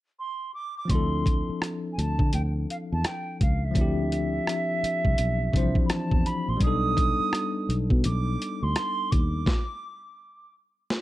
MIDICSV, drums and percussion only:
0, 0, Header, 1, 2, 480
1, 0, Start_track
1, 0, Tempo, 714286
1, 599, Time_signature, 4, 2, 24, 8
1, 7402, End_track
2, 0, Start_track
2, 0, Title_t, "Drums"
2, 601, Note_on_c, 9, 36, 75
2, 602, Note_on_c, 9, 42, 70
2, 668, Note_off_c, 9, 36, 0
2, 669, Note_off_c, 9, 42, 0
2, 846, Note_on_c, 9, 36, 83
2, 851, Note_on_c, 9, 42, 63
2, 913, Note_off_c, 9, 36, 0
2, 918, Note_off_c, 9, 42, 0
2, 1087, Note_on_c, 9, 37, 83
2, 1100, Note_on_c, 9, 42, 69
2, 1154, Note_off_c, 9, 37, 0
2, 1167, Note_off_c, 9, 42, 0
2, 1336, Note_on_c, 9, 42, 59
2, 1403, Note_off_c, 9, 42, 0
2, 1472, Note_on_c, 9, 36, 72
2, 1540, Note_off_c, 9, 36, 0
2, 1564, Note_on_c, 9, 42, 71
2, 1631, Note_off_c, 9, 42, 0
2, 1817, Note_on_c, 9, 42, 55
2, 1884, Note_off_c, 9, 42, 0
2, 2046, Note_on_c, 9, 42, 68
2, 2048, Note_on_c, 9, 37, 86
2, 2113, Note_off_c, 9, 42, 0
2, 2115, Note_off_c, 9, 37, 0
2, 2291, Note_on_c, 9, 36, 82
2, 2291, Note_on_c, 9, 42, 63
2, 2358, Note_off_c, 9, 36, 0
2, 2358, Note_off_c, 9, 42, 0
2, 2520, Note_on_c, 9, 36, 75
2, 2523, Note_on_c, 9, 42, 69
2, 2587, Note_off_c, 9, 36, 0
2, 2590, Note_off_c, 9, 42, 0
2, 2770, Note_on_c, 9, 42, 61
2, 2837, Note_off_c, 9, 42, 0
2, 3007, Note_on_c, 9, 37, 78
2, 3019, Note_on_c, 9, 42, 69
2, 3074, Note_off_c, 9, 37, 0
2, 3086, Note_off_c, 9, 42, 0
2, 3253, Note_on_c, 9, 42, 61
2, 3321, Note_off_c, 9, 42, 0
2, 3392, Note_on_c, 9, 36, 72
2, 3459, Note_off_c, 9, 36, 0
2, 3481, Note_on_c, 9, 42, 72
2, 3548, Note_off_c, 9, 42, 0
2, 3719, Note_on_c, 9, 36, 70
2, 3735, Note_on_c, 9, 42, 55
2, 3787, Note_off_c, 9, 36, 0
2, 3802, Note_off_c, 9, 42, 0
2, 3865, Note_on_c, 9, 36, 70
2, 3932, Note_off_c, 9, 36, 0
2, 3962, Note_on_c, 9, 42, 68
2, 3964, Note_on_c, 9, 37, 85
2, 4029, Note_off_c, 9, 42, 0
2, 4031, Note_off_c, 9, 37, 0
2, 4109, Note_on_c, 9, 36, 75
2, 4176, Note_off_c, 9, 36, 0
2, 4206, Note_on_c, 9, 42, 64
2, 4274, Note_off_c, 9, 42, 0
2, 4438, Note_on_c, 9, 36, 77
2, 4439, Note_on_c, 9, 42, 72
2, 4506, Note_off_c, 9, 36, 0
2, 4506, Note_off_c, 9, 42, 0
2, 4683, Note_on_c, 9, 36, 88
2, 4688, Note_on_c, 9, 42, 63
2, 4750, Note_off_c, 9, 36, 0
2, 4755, Note_off_c, 9, 42, 0
2, 4925, Note_on_c, 9, 37, 83
2, 4937, Note_on_c, 9, 42, 69
2, 4992, Note_off_c, 9, 37, 0
2, 5004, Note_off_c, 9, 42, 0
2, 5173, Note_on_c, 9, 42, 60
2, 5241, Note_off_c, 9, 42, 0
2, 5311, Note_on_c, 9, 36, 72
2, 5378, Note_off_c, 9, 36, 0
2, 5403, Note_on_c, 9, 42, 79
2, 5470, Note_off_c, 9, 42, 0
2, 5656, Note_on_c, 9, 42, 58
2, 5724, Note_off_c, 9, 42, 0
2, 5884, Note_on_c, 9, 42, 71
2, 5887, Note_on_c, 9, 37, 82
2, 5952, Note_off_c, 9, 42, 0
2, 5954, Note_off_c, 9, 37, 0
2, 6130, Note_on_c, 9, 36, 84
2, 6131, Note_on_c, 9, 42, 62
2, 6198, Note_off_c, 9, 36, 0
2, 6198, Note_off_c, 9, 42, 0
2, 6359, Note_on_c, 9, 36, 86
2, 6366, Note_on_c, 9, 38, 68
2, 6427, Note_off_c, 9, 36, 0
2, 6433, Note_off_c, 9, 38, 0
2, 7327, Note_on_c, 9, 38, 51
2, 7394, Note_off_c, 9, 38, 0
2, 7402, End_track
0, 0, End_of_file